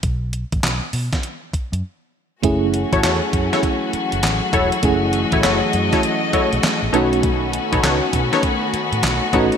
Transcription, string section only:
0, 0, Header, 1, 2, 480
1, 0, Start_track
1, 0, Tempo, 600000
1, 27, Time_signature, 4, 2, 24, 8
1, 7658, End_track
2, 0, Start_track
2, 0, Title_t, "String section"
2, 0, Program_c, 0, 48
2, 1943, Note_on_c, 0, 61, 73
2, 1944, Note_on_c, 0, 52, 85
2, 1945, Note_on_c, 0, 66, 83
2, 1946, Note_on_c, 0, 54, 74
2, 1946, Note_on_c, 0, 57, 74
2, 3845, Note_off_c, 0, 61, 0
2, 3867, Note_on_c, 0, 75, 71
2, 5514, Note_off_c, 0, 52, 0
2, 5514, Note_off_c, 0, 54, 0
2, 5514, Note_off_c, 0, 66, 0
2, 5530, Note_off_c, 0, 75, 0
2, 5548, Note_on_c, 0, 61, 73
2, 5549, Note_on_c, 0, 59, 69
2, 5549, Note_on_c, 0, 66, 83
2, 5550, Note_on_c, 0, 51, 78
2, 7448, Note_off_c, 0, 61, 0
2, 7464, Note_on_c, 0, 63, 77
2, 7658, Note_off_c, 0, 51, 0
2, 7658, Note_off_c, 0, 57, 0
2, 7658, Note_off_c, 0, 59, 0
2, 7658, Note_off_c, 0, 63, 0
2, 7658, Note_off_c, 0, 66, 0
2, 7658, End_track
0, 0, End_of_file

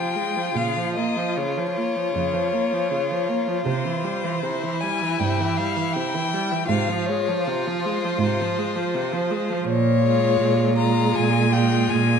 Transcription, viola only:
0, 0, Header, 1, 2, 480
1, 0, Start_track
1, 0, Key_signature, -4, "minor"
1, 0, Tempo, 791557
1, 337, Time_signature, 4, 2, 24, 8
1, 1299, Tempo, 764331
1, 3219, Tempo, 743494
1, 7735, End_track
2, 0, Start_track
2, 0, Title_t, "Viola"
2, 0, Program_c, 0, 41
2, 0, Note_on_c, 0, 53, 36
2, 96, Note_on_c, 0, 56, 33
2, 105, Note_off_c, 0, 53, 0
2, 222, Note_on_c, 0, 53, 30
2, 231, Note_off_c, 0, 56, 0
2, 328, Note_off_c, 0, 53, 0
2, 332, Note_on_c, 0, 49, 34
2, 466, Note_on_c, 0, 53, 36
2, 475, Note_off_c, 0, 49, 0
2, 587, Note_on_c, 0, 58, 36
2, 596, Note_off_c, 0, 53, 0
2, 707, Note_on_c, 0, 53, 35
2, 716, Note_off_c, 0, 58, 0
2, 832, Note_on_c, 0, 49, 38
2, 841, Note_off_c, 0, 53, 0
2, 956, Note_on_c, 0, 53, 34
2, 965, Note_off_c, 0, 49, 0
2, 1078, Note_on_c, 0, 58, 35
2, 1087, Note_off_c, 0, 53, 0
2, 1189, Note_on_c, 0, 53, 32
2, 1198, Note_off_c, 0, 58, 0
2, 1297, Note_off_c, 0, 53, 0
2, 1300, Note_on_c, 0, 49, 38
2, 1422, Note_on_c, 0, 53, 35
2, 1431, Note_off_c, 0, 49, 0
2, 1544, Note_on_c, 0, 58, 36
2, 1553, Note_off_c, 0, 53, 0
2, 1668, Note_on_c, 0, 53, 35
2, 1677, Note_off_c, 0, 58, 0
2, 1783, Note_on_c, 0, 49, 36
2, 1792, Note_off_c, 0, 53, 0
2, 1908, Note_on_c, 0, 53, 36
2, 1918, Note_off_c, 0, 49, 0
2, 2019, Note_on_c, 0, 58, 38
2, 2028, Note_off_c, 0, 53, 0
2, 2140, Note_on_c, 0, 53, 35
2, 2149, Note_off_c, 0, 58, 0
2, 2253, Note_off_c, 0, 53, 0
2, 2256, Note_on_c, 0, 48, 38
2, 2374, Note_on_c, 0, 52, 40
2, 2383, Note_off_c, 0, 48, 0
2, 2492, Note_on_c, 0, 55, 39
2, 2501, Note_off_c, 0, 52, 0
2, 2615, Note_on_c, 0, 52, 40
2, 2624, Note_off_c, 0, 55, 0
2, 2736, Note_on_c, 0, 48, 40
2, 2745, Note_off_c, 0, 52, 0
2, 2862, Note_on_c, 0, 52, 39
2, 2871, Note_off_c, 0, 48, 0
2, 2988, Note_on_c, 0, 55, 39
2, 2997, Note_off_c, 0, 52, 0
2, 3111, Note_on_c, 0, 52, 35
2, 3121, Note_off_c, 0, 55, 0
2, 3224, Note_off_c, 0, 52, 0
2, 3228, Note_on_c, 0, 48, 40
2, 3351, Note_on_c, 0, 52, 41
2, 3361, Note_off_c, 0, 48, 0
2, 3473, Note_on_c, 0, 55, 42
2, 3483, Note_off_c, 0, 52, 0
2, 3585, Note_on_c, 0, 52, 41
2, 3594, Note_off_c, 0, 55, 0
2, 3709, Note_on_c, 0, 48, 39
2, 3719, Note_off_c, 0, 52, 0
2, 3830, Note_on_c, 0, 52, 43
2, 3840, Note_off_c, 0, 48, 0
2, 3950, Note_on_c, 0, 55, 43
2, 3960, Note_off_c, 0, 52, 0
2, 4073, Note_on_c, 0, 52, 39
2, 4083, Note_off_c, 0, 55, 0
2, 4180, Note_off_c, 0, 52, 0
2, 4184, Note_on_c, 0, 48, 43
2, 4307, Note_on_c, 0, 53, 43
2, 4316, Note_off_c, 0, 48, 0
2, 4442, Note_on_c, 0, 56, 44
2, 4451, Note_off_c, 0, 53, 0
2, 4564, Note_on_c, 0, 53, 42
2, 4574, Note_off_c, 0, 56, 0
2, 4688, Note_on_c, 0, 48, 44
2, 4698, Note_off_c, 0, 53, 0
2, 4814, Note_on_c, 0, 53, 48
2, 4824, Note_off_c, 0, 48, 0
2, 4934, Note_on_c, 0, 56, 43
2, 4943, Note_off_c, 0, 53, 0
2, 5056, Note_on_c, 0, 53, 42
2, 5066, Note_off_c, 0, 56, 0
2, 5163, Note_off_c, 0, 53, 0
2, 5174, Note_on_c, 0, 48, 45
2, 5293, Note_on_c, 0, 53, 46
2, 5303, Note_off_c, 0, 48, 0
2, 5405, Note_on_c, 0, 56, 44
2, 5415, Note_off_c, 0, 53, 0
2, 5515, Note_on_c, 0, 53, 42
2, 5525, Note_off_c, 0, 56, 0
2, 5639, Note_on_c, 0, 48, 47
2, 5649, Note_off_c, 0, 53, 0
2, 5755, Note_on_c, 0, 53, 48
2, 5764, Note_off_c, 0, 48, 0
2, 5873, Note_on_c, 0, 56, 43
2, 5883, Note_off_c, 0, 53, 0
2, 5995, Note_on_c, 0, 53, 42
2, 6005, Note_off_c, 0, 56, 0
2, 6104, Note_off_c, 0, 53, 0
2, 6345, Note_on_c, 0, 56, 47
2, 6812, Note_off_c, 0, 56, 0
2, 6820, Note_on_c, 0, 56, 44
2, 7292, Note_off_c, 0, 56, 0
2, 7305, Note_on_c, 0, 56, 43
2, 7735, Note_off_c, 0, 56, 0
2, 7735, End_track
0, 0, End_of_file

